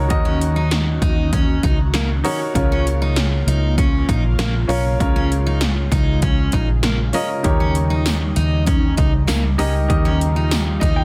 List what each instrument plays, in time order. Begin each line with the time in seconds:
Already playing: analog synth pad D#3 C#4 F#4, grand piano D#4 F#4 A#4 C#5
0.09 fingered electric bass D#2, grand piano D#3 D#4 F#4 A#4 D#5, kick, closed hi-hat
0.25 steel-string acoustic guitar C#4
0.41 closed hi-hat
0.56 steel-string acoustic guitar D#4
0.71 snare, closed hi-hat
1.02 fingered electric bass D#2, steel-string acoustic guitar D#4, kick, closed hi-hat
1.33 steel-string acoustic guitar C#4, kick, closed hi-hat
1.63 fingered electric bass C#2, steel-string acoustic guitar D#4, kick, closed hi-hat
1.94 steel-string acoustic guitar A#3, snare, closed hi-hat
2.24 steel-string acoustic guitar C#4, grand piano D#4 F#4 A#4 C#5, open hi-hat
2.54 fingered electric bass C#2, grand piano C#3 C#4 F4 A#4 C#5, analog synth pad C#3 A#3 F4, kick, closed hi-hat
2.72 steel-string acoustic guitar C#4
2.87 closed hi-hat
3.02 steel-string acoustic guitar D#4
3.16 snare, closed hi-hat
3.47 fingered electric bass C#2, steel-string acoustic guitar D#4, closed hi-hat
3.78 steel-string acoustic guitar C#4, kick, closed hi-hat
4.09 fingered electric bass A#1, steel-string acoustic guitar D#4, kick, closed hi-hat
4.39 fingered electric bass A#1, steel-string acoustic guitar A#3, snare, closed hi-hat
4.68 fingered electric bass B1, grand piano C#4 F4 A#4 C#5, steel-string acoustic guitar C#4, open hi-hat
4.99 fingered electric bass C#2, grand piano C#3 C#4 F4 A#4 C#5, analog synth pad G#3, kick, closed hi-hat
5.16 steel-string acoustic guitar C#4
5.32 closed hi-hat
5.46 steel-string acoustic guitar D#4
5.61 snare, closed hi-hat
5.92 fingered electric bass C#2, steel-string acoustic guitar D#4, kick, closed hi-hat
6.22 steel-string acoustic guitar C#4, kick, closed hi-hat
6.52 fingered electric bass A#1, steel-string acoustic guitar D#4, kick, closed hi-hat
6.83 steel-string acoustic guitar A#3, snare, closed hi-hat
7.13 grand piano C#4 F4 A#4 D#5, steel-string acoustic guitar C#4, open hi-hat
7.43 fingered electric bass D#2, grand piano D#3 D#4 G4 A#4 C#5, analog synth pad G3 D#4, kick, closed hi-hat
7.60 steel-string acoustic guitar C#4
7.75 closed hi-hat
7.90 steel-string acoustic guitar D#4
8.06 snare, closed hi-hat, tambourine
8.36 fingered electric bass D#2, steel-string acoustic guitar D#4, closed hi-hat
8.66 steel-string acoustic guitar C#4, kick, closed hi-hat
8.97 fingered electric bass C#2, steel-string acoustic guitar D#4, kick, closed hi-hat
9.27 fingered electric bass C#2, steel-string acoustic guitar A#3, snare, closed hi-hat, tambourine
9.58 steel-string acoustic guitar C#4, grand piano D#4 G4 A#4 D#5, open hi-hat
9.88 fingered electric bass D#2, grand piano D#3 D#4 G4 A#4 D#5, analog synth pad F4, kick, closed hi-hat
10.05 steel-string acoustic guitar C#4
10.21 closed hi-hat
10.36 steel-string acoustic guitar D#4
10.51 snare, closed hi-hat, tambourine
10.80 fingered electric bass D#2, steel-string acoustic guitar D#4, grand piano D#5, kick, closed hi-hat
10.96 grand piano G5